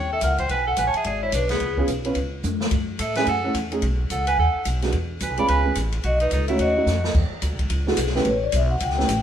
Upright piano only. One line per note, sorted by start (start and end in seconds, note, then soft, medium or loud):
1.78 1.87 B3 medium
1.78 1.88 C#4 medium
1.78 1.88 F4 medium
1.78 1.88 G#4 medium
2.05 2.15 B3 medium
2.05 2.15 C#4 medium
2.05 2.15 F4 medium
2.05 2.16 B4 medium
3.16 3.26 A3 medium
3.16 3.26 C#4 medium
3.16 3.26 E4 medium
3.16 3.26 G#4 medium
3.44 3.54 A3 medium
3.44 3.54 C#4 medium
3.44 3.54 E4 medium
3.44 3.54 A4 medium
3.72 3.81 A3 medium
3.72 3.82 C#4 medium
3.72 3.82 D#4 medium
3.72 3.82 G#4 medium
4.82 4.92 G#3 medium
4.82 4.93 B3 soft
4.82 4.93 D4 soft
4.82 4.93 F#4 medium
5.38 5.64 G#3 medium
5.38 5.64 B3 medium
5.38 5.64 C#4 medium
5.38 5.64 F4 medium
5.65 5.75 G#3 soft
5.65 5.75 B3 soft
5.65 5.75 C#4 soft
5.65 5.75 G#4 medium
6.49 6.75 A3 medium
6.49 6.75 C#4 medium
6.49 6.75 D#4 medium
6.49 6.75 F#4 medium
6.76 6.86 A3 medium
6.76 6.86 C#4 soft
6.76 6.86 D#4 soft
6.76 6.87 F#4 medium
7.87 7.97 G#3 medium
7.87 7.97 B3 medium
7.87 7.97 D4 medium
7.87 7.97 E4 medium
7.87 7.97 F#4 medium
8.15 8.25 A3 medium
8.15 8.25 B3 medium
8.15 8.25 C#4 medium
8.15 8.25 E4 medium
8.15 8.25 G4 medium
8.98 9.08 A3 medium
8.98 9.08 B3 medium
8.98 9.08 C#4 medium
8.98 9.08 E4 medium
8.98 9.08 G4 medium